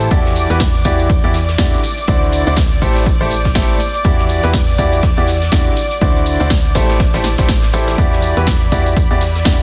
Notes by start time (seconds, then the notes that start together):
Already playing: A4 A5
0.01 closed hi-hat, tambourine, shaker
0.11 E2 E3 E4 F#4 G4 D5 D6, kick, closed hi-hat, tambourine, shaker
0.25 snare, tambourine, shaker
0.36 closed hi-hat, open hi-hat, tambourine, shaker
0.50 E2 E3 E4 F#4 G4 B4, closed hi-hat, tambourine, shaker
0.60 kick, snare, closed hi-hat, tambourine, shaker
0.75 closed hi-hat, tambourine, shaker
0.85 E2 E3 E4 F#4 G4 D5, kick, closed hi-hat, open hi-hat, tambourine, shaker
0.99 closed hi-hat, tambourine, shaker
1.10 kick, closed hi-hat, tambourine, shaker
1.24 E2 E3 E4 F#4 G4 D5, tambourine, shaker
1.34 snare, closed hi-hat, open hi-hat, tambourine, shaker
1.48 snare, closed hi-hat, tambourine, shaker
1.58 E2 D3 E4 F#4 G4 D5, kick, snare, closed hi-hat, tambourine, shaker
1.73 tambourine, shaker
1.83 closed hi-hat, open hi-hat, tambourine, shaker
1.97 closed hi-hat, tambourine, shaker
2.08 D2 D3 E4 F#4 C5 D5, kick, closed hi-hat, tambourine, shaker
2.22 tambourine, shaker
2.32 closed hi-hat, open hi-hat, tambourine, shaker
2.46 D2 D3 E4 F#4 C5 D5, closed hi-hat, tambourine, shaker
2.56 kick, snare, closed hi-hat, tambourine, shaker
2.71 tambourine, shaker
2.82 A1 A3 E4 G4 A4 C5, kick, closed hi-hat, open hi-hat, tambourine, shaker
2.96 snare, closed hi-hat, tambourine, shaker
3.06 kick, closed hi-hat, tambourine, shaker
3.21 A1 A3 E4 G4 A4 C5, tambourine, shaker
3.31 closed hi-hat, open hi-hat, tambourine, shaker
3.45 kick, snare, closed hi-hat, tambourine, shaker
3.55 A1 A3 E4 G4 A4 C5, kick, snare, closed hi-hat, tambourine, shaker
3.70 tambourine, shaker
3.80 closed hi-hat, open hi-hat, tambourine, shaker
3.94 closed hi-hat, tambourine, shaker
4.04 E2 E3 E4 F#4 G4 D5, kick, closed hi-hat, tambourine, shaker
4.19 snare, tambourine, shaker
4.29 closed hi-hat, open hi-hat, tambourine, shaker
4.43 E2 E3 E4 F#4 G4 B4, closed hi-hat, tambourine, shaker
4.54 kick, snare, closed hi-hat, tambourine, shaker
4.68 closed hi-hat, tambourine, shaker
4.78 E2 E3 E4 F#4 G4 D5, kick, closed hi-hat, open hi-hat, tambourine, shaker
4.93 closed hi-hat, tambourine, shaker
5.02 kick, snare, closed hi-hat, tambourine, shaker
5.17 E2 E3 E4 F#4 G4 D5, closed hi-hat, tambourine, shaker
5.27 snare, closed hi-hat, open hi-hat, tambourine, shaker
5.42 snare, closed hi-hat, tambourine, shaker
5.52 E2 D3 E4 F#4 G4 D5, kick, snare, closed hi-hat, tambourine, shaker
5.67 tambourine, shaker
5.77 closed hi-hat, open hi-hat, tambourine, shaker
5.91 closed hi-hat, tambourine, shaker
6.01 D2 D3 E4 F#4 C5 D5, kick, closed hi-hat, tambourine, shaker
6.16 tambourine, shaker
6.26 closed hi-hat, open hi-hat, tambourine, shaker
6.40 D2 D3 E4 F#4 C5 D5, closed hi-hat, tambourine, shaker
6.50 kick, snare, closed hi-hat, tambourine, shaker
6.64 tambourine, shaker
6.75 A1 A3 E4 G4 A4 C5, kick, snare, closed hi-hat, open hi-hat, tambourine, shaker
6.90 snare, closed hi-hat, tambourine, shaker
7.00 kick, snare, closed hi-hat, tambourine, shaker
7.13 A1 A3 E4 G4 A4 C5, snare, closed hi-hat, tambourine, shaker
7.24 snare, closed hi-hat, open hi-hat, tambourine, shaker
7.38 A1 A3 E4 G4 A4 C5, kick, snare, closed hi-hat, tambourine, shaker
7.49 kick, snare, closed hi-hat, tambourine, shaker
7.63 snare, closed hi-hat, tambourine, shaker
7.73 A1 E3 E4 G4 A4 C5, snare, closed hi-hat, open hi-hat, tambourine, shaker
7.88 snare, closed hi-hat, tambourine, shaker
7.98 E2 E3 E4 F#4 G4 D5 B5, kick, closed hi-hat, tambourine, shaker
8.13 snare, tambourine, shaker
8.22 closed hi-hat, open hi-hat, tambourine, shaker
8.37 E2 E3 E4 F#4 G4 B4, closed hi-hat, tambourine, shaker
8.47 kick, snare, closed hi-hat, tambourine, shaker
8.61 closed hi-hat, tambourine, shaker
8.72 E2 E3 E4 F#4 G4 D5, kick, closed hi-hat, open hi-hat, tambourine, shaker
8.86 closed hi-hat, tambourine, shaker
8.96 kick, closed hi-hat, tambourine, shaker
9.11 E2 E3 E4 F#4 G4 D5, tambourine, shaker
9.21 snare, closed hi-hat, open hi-hat, tambourine, shaker
9.35 snare, closed hi-hat, tambourine, shaker
9.45 E2 D3 E4 F#4 G4 D5, kick, snare, closed hi-hat, tambourine, shaker